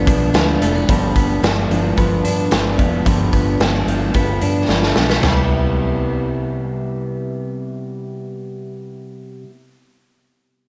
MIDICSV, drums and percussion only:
0, 0, Header, 1, 2, 480
1, 0, Start_track
1, 0, Key_signature, 0, "major"
1, 0, Tempo, 543971
1, 783, Time_signature, 4, 2, 24, 8
1, 9425, End_track
2, 0, Start_track
2, 0, Title_t, "Drums"
2, 63, Note_on_c, 9, 46, 74
2, 64, Note_on_c, 9, 36, 103
2, 65, Note_on_c, 9, 44, 64
2, 152, Note_off_c, 9, 36, 0
2, 152, Note_off_c, 9, 46, 0
2, 153, Note_off_c, 9, 44, 0
2, 301, Note_on_c, 9, 46, 96
2, 305, Note_on_c, 9, 44, 60
2, 308, Note_on_c, 9, 38, 117
2, 389, Note_off_c, 9, 46, 0
2, 393, Note_off_c, 9, 44, 0
2, 396, Note_off_c, 9, 38, 0
2, 545, Note_on_c, 9, 46, 71
2, 547, Note_on_c, 9, 44, 67
2, 633, Note_off_c, 9, 46, 0
2, 635, Note_off_c, 9, 44, 0
2, 783, Note_on_c, 9, 42, 91
2, 784, Note_on_c, 9, 36, 99
2, 871, Note_off_c, 9, 42, 0
2, 873, Note_off_c, 9, 36, 0
2, 1022, Note_on_c, 9, 36, 84
2, 1022, Note_on_c, 9, 42, 74
2, 1110, Note_off_c, 9, 36, 0
2, 1110, Note_off_c, 9, 42, 0
2, 1267, Note_on_c, 9, 42, 77
2, 1273, Note_on_c, 9, 38, 106
2, 1355, Note_off_c, 9, 42, 0
2, 1361, Note_off_c, 9, 38, 0
2, 1510, Note_on_c, 9, 42, 57
2, 1598, Note_off_c, 9, 42, 0
2, 1741, Note_on_c, 9, 42, 75
2, 1745, Note_on_c, 9, 36, 72
2, 1829, Note_off_c, 9, 42, 0
2, 1833, Note_off_c, 9, 36, 0
2, 1983, Note_on_c, 9, 42, 68
2, 2071, Note_off_c, 9, 42, 0
2, 2218, Note_on_c, 9, 42, 89
2, 2225, Note_on_c, 9, 38, 99
2, 2306, Note_off_c, 9, 42, 0
2, 2313, Note_off_c, 9, 38, 0
2, 2462, Note_on_c, 9, 36, 84
2, 2462, Note_on_c, 9, 42, 64
2, 2550, Note_off_c, 9, 36, 0
2, 2550, Note_off_c, 9, 42, 0
2, 2701, Note_on_c, 9, 42, 93
2, 2703, Note_on_c, 9, 36, 90
2, 2789, Note_off_c, 9, 42, 0
2, 2791, Note_off_c, 9, 36, 0
2, 2936, Note_on_c, 9, 42, 72
2, 2939, Note_on_c, 9, 36, 78
2, 3024, Note_off_c, 9, 42, 0
2, 3027, Note_off_c, 9, 36, 0
2, 3179, Note_on_c, 9, 42, 70
2, 3185, Note_on_c, 9, 38, 102
2, 3268, Note_off_c, 9, 42, 0
2, 3273, Note_off_c, 9, 38, 0
2, 3425, Note_on_c, 9, 42, 60
2, 3513, Note_off_c, 9, 42, 0
2, 3653, Note_on_c, 9, 42, 71
2, 3659, Note_on_c, 9, 36, 73
2, 3741, Note_off_c, 9, 42, 0
2, 3747, Note_off_c, 9, 36, 0
2, 3894, Note_on_c, 9, 42, 61
2, 3982, Note_off_c, 9, 42, 0
2, 4139, Note_on_c, 9, 38, 48
2, 4227, Note_off_c, 9, 38, 0
2, 4259, Note_on_c, 9, 38, 43
2, 4347, Note_off_c, 9, 38, 0
2, 4375, Note_on_c, 9, 38, 76
2, 4463, Note_off_c, 9, 38, 0
2, 4497, Note_on_c, 9, 38, 73
2, 4585, Note_off_c, 9, 38, 0
2, 4615, Note_on_c, 9, 43, 83
2, 4615, Note_on_c, 9, 49, 75
2, 4619, Note_on_c, 9, 38, 85
2, 4703, Note_off_c, 9, 43, 0
2, 4703, Note_off_c, 9, 49, 0
2, 4707, Note_off_c, 9, 38, 0
2, 9425, End_track
0, 0, End_of_file